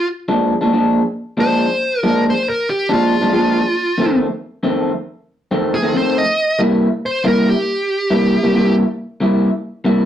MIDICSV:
0, 0, Header, 1, 3, 480
1, 0, Start_track
1, 0, Tempo, 652174
1, 1014, Time_signature, 4, 2, 24, 8
1, 7399, End_track
2, 0, Start_track
2, 0, Title_t, "Lead electric guitar"
2, 0, Program_c, 0, 29
2, 1032, Note_on_c, 0, 72, 97
2, 1466, Note_off_c, 0, 72, 0
2, 1466, Note_on_c, 0, 70, 97
2, 1644, Note_off_c, 0, 70, 0
2, 1693, Note_on_c, 0, 72, 74
2, 1829, Note_off_c, 0, 72, 0
2, 1835, Note_on_c, 0, 70, 72
2, 1980, Note_off_c, 0, 70, 0
2, 1987, Note_on_c, 0, 67, 87
2, 2136, Note_off_c, 0, 67, 0
2, 2159, Note_on_c, 0, 65, 89
2, 3078, Note_off_c, 0, 65, 0
2, 4231, Note_on_c, 0, 68, 88
2, 4378, Note_off_c, 0, 68, 0
2, 4395, Note_on_c, 0, 72, 81
2, 4540, Note_off_c, 0, 72, 0
2, 4549, Note_on_c, 0, 75, 93
2, 4852, Note_off_c, 0, 75, 0
2, 5194, Note_on_c, 0, 72, 81
2, 5340, Note_off_c, 0, 72, 0
2, 5354, Note_on_c, 0, 70, 86
2, 5500, Note_off_c, 0, 70, 0
2, 5516, Note_on_c, 0, 67, 88
2, 6439, Note_off_c, 0, 67, 0
2, 7399, End_track
3, 0, Start_track
3, 0, Title_t, "Clean electric guitar"
3, 0, Program_c, 1, 27
3, 209, Note_on_c, 1, 53, 66
3, 210, Note_on_c, 1, 56, 79
3, 210, Note_on_c, 1, 62, 85
3, 216, Note_on_c, 1, 46, 65
3, 392, Note_off_c, 1, 53, 0
3, 392, Note_off_c, 1, 56, 0
3, 392, Note_off_c, 1, 62, 0
3, 395, Note_off_c, 1, 46, 0
3, 449, Note_on_c, 1, 62, 77
3, 454, Note_on_c, 1, 56, 70
3, 458, Note_on_c, 1, 53, 68
3, 463, Note_on_c, 1, 46, 63
3, 527, Note_off_c, 1, 46, 0
3, 530, Note_off_c, 1, 53, 0
3, 532, Note_off_c, 1, 56, 0
3, 534, Note_off_c, 1, 62, 0
3, 536, Note_on_c, 1, 46, 80
3, 539, Note_on_c, 1, 53, 83
3, 541, Note_on_c, 1, 56, 80
3, 542, Note_on_c, 1, 62, 85
3, 738, Note_off_c, 1, 46, 0
3, 740, Note_off_c, 1, 53, 0
3, 741, Note_off_c, 1, 56, 0
3, 742, Note_off_c, 1, 62, 0
3, 1010, Note_on_c, 1, 46, 79
3, 1016, Note_on_c, 1, 53, 70
3, 1016, Note_on_c, 1, 56, 78
3, 1019, Note_on_c, 1, 62, 89
3, 1215, Note_off_c, 1, 46, 0
3, 1218, Note_off_c, 1, 53, 0
3, 1218, Note_off_c, 1, 56, 0
3, 1220, Note_off_c, 1, 62, 0
3, 1497, Note_on_c, 1, 53, 74
3, 1498, Note_on_c, 1, 46, 78
3, 1499, Note_on_c, 1, 56, 81
3, 1503, Note_on_c, 1, 62, 90
3, 1698, Note_off_c, 1, 53, 0
3, 1699, Note_off_c, 1, 46, 0
3, 1699, Note_off_c, 1, 56, 0
3, 1701, Note_off_c, 1, 62, 0
3, 2128, Note_on_c, 1, 62, 88
3, 2132, Note_on_c, 1, 56, 73
3, 2136, Note_on_c, 1, 53, 69
3, 2137, Note_on_c, 1, 46, 64
3, 2310, Note_off_c, 1, 62, 0
3, 2312, Note_off_c, 1, 56, 0
3, 2314, Note_off_c, 1, 53, 0
3, 2315, Note_off_c, 1, 46, 0
3, 2364, Note_on_c, 1, 62, 77
3, 2370, Note_on_c, 1, 56, 74
3, 2373, Note_on_c, 1, 46, 62
3, 2376, Note_on_c, 1, 53, 61
3, 2441, Note_off_c, 1, 46, 0
3, 2441, Note_off_c, 1, 53, 0
3, 2447, Note_off_c, 1, 56, 0
3, 2450, Note_on_c, 1, 46, 84
3, 2450, Note_on_c, 1, 53, 84
3, 2451, Note_off_c, 1, 62, 0
3, 2456, Note_on_c, 1, 56, 79
3, 2459, Note_on_c, 1, 62, 90
3, 2654, Note_off_c, 1, 46, 0
3, 2655, Note_off_c, 1, 53, 0
3, 2658, Note_off_c, 1, 56, 0
3, 2659, Note_off_c, 1, 62, 0
3, 2928, Note_on_c, 1, 41, 76
3, 2931, Note_on_c, 1, 51, 86
3, 2936, Note_on_c, 1, 57, 81
3, 2938, Note_on_c, 1, 60, 81
3, 3133, Note_off_c, 1, 41, 0
3, 3135, Note_off_c, 1, 51, 0
3, 3138, Note_off_c, 1, 57, 0
3, 3139, Note_off_c, 1, 60, 0
3, 3408, Note_on_c, 1, 41, 84
3, 3412, Note_on_c, 1, 51, 82
3, 3416, Note_on_c, 1, 60, 82
3, 3417, Note_on_c, 1, 57, 84
3, 3614, Note_off_c, 1, 41, 0
3, 3616, Note_off_c, 1, 51, 0
3, 3618, Note_off_c, 1, 57, 0
3, 3618, Note_off_c, 1, 60, 0
3, 4057, Note_on_c, 1, 60, 84
3, 4061, Note_on_c, 1, 51, 71
3, 4061, Note_on_c, 1, 57, 83
3, 4064, Note_on_c, 1, 41, 67
3, 4235, Note_off_c, 1, 60, 0
3, 4237, Note_off_c, 1, 51, 0
3, 4237, Note_off_c, 1, 57, 0
3, 4239, Note_off_c, 1, 41, 0
3, 4287, Note_on_c, 1, 60, 76
3, 4290, Note_on_c, 1, 57, 77
3, 4294, Note_on_c, 1, 51, 62
3, 4297, Note_on_c, 1, 41, 66
3, 4359, Note_off_c, 1, 41, 0
3, 4363, Note_off_c, 1, 51, 0
3, 4367, Note_on_c, 1, 41, 79
3, 4368, Note_off_c, 1, 57, 0
3, 4370, Note_off_c, 1, 60, 0
3, 4372, Note_on_c, 1, 51, 82
3, 4377, Note_on_c, 1, 57, 86
3, 4378, Note_on_c, 1, 60, 95
3, 4574, Note_off_c, 1, 41, 0
3, 4576, Note_off_c, 1, 51, 0
3, 4579, Note_off_c, 1, 57, 0
3, 4579, Note_off_c, 1, 60, 0
3, 4848, Note_on_c, 1, 48, 81
3, 4850, Note_on_c, 1, 55, 73
3, 4853, Note_on_c, 1, 64, 86
3, 4855, Note_on_c, 1, 58, 83
3, 5054, Note_off_c, 1, 48, 0
3, 5055, Note_off_c, 1, 55, 0
3, 5057, Note_off_c, 1, 64, 0
3, 5058, Note_off_c, 1, 58, 0
3, 5329, Note_on_c, 1, 48, 75
3, 5330, Note_on_c, 1, 55, 81
3, 5333, Note_on_c, 1, 58, 87
3, 5336, Note_on_c, 1, 64, 91
3, 5535, Note_off_c, 1, 48, 0
3, 5536, Note_off_c, 1, 55, 0
3, 5537, Note_off_c, 1, 58, 0
3, 5539, Note_off_c, 1, 64, 0
3, 5965, Note_on_c, 1, 64, 91
3, 5968, Note_on_c, 1, 55, 69
3, 5969, Note_on_c, 1, 58, 83
3, 5973, Note_on_c, 1, 48, 62
3, 6150, Note_off_c, 1, 64, 0
3, 6152, Note_off_c, 1, 55, 0
3, 6152, Note_off_c, 1, 58, 0
3, 6154, Note_off_c, 1, 48, 0
3, 6206, Note_on_c, 1, 64, 72
3, 6208, Note_on_c, 1, 58, 76
3, 6212, Note_on_c, 1, 48, 62
3, 6214, Note_on_c, 1, 55, 68
3, 6279, Note_off_c, 1, 48, 0
3, 6284, Note_off_c, 1, 55, 0
3, 6284, Note_off_c, 1, 58, 0
3, 6288, Note_off_c, 1, 64, 0
3, 6288, Note_on_c, 1, 48, 79
3, 6292, Note_on_c, 1, 55, 85
3, 6293, Note_on_c, 1, 58, 89
3, 6296, Note_on_c, 1, 64, 90
3, 6495, Note_off_c, 1, 48, 0
3, 6498, Note_off_c, 1, 55, 0
3, 6498, Note_off_c, 1, 58, 0
3, 6500, Note_off_c, 1, 64, 0
3, 6774, Note_on_c, 1, 48, 71
3, 6781, Note_on_c, 1, 55, 79
3, 6781, Note_on_c, 1, 58, 77
3, 6785, Note_on_c, 1, 64, 89
3, 6979, Note_off_c, 1, 48, 0
3, 6982, Note_off_c, 1, 55, 0
3, 6983, Note_off_c, 1, 58, 0
3, 6985, Note_off_c, 1, 64, 0
3, 7246, Note_on_c, 1, 48, 80
3, 7250, Note_on_c, 1, 55, 84
3, 7250, Note_on_c, 1, 58, 89
3, 7256, Note_on_c, 1, 64, 91
3, 7399, Note_off_c, 1, 48, 0
3, 7399, Note_off_c, 1, 55, 0
3, 7399, Note_off_c, 1, 58, 0
3, 7399, Note_off_c, 1, 64, 0
3, 7399, End_track
0, 0, End_of_file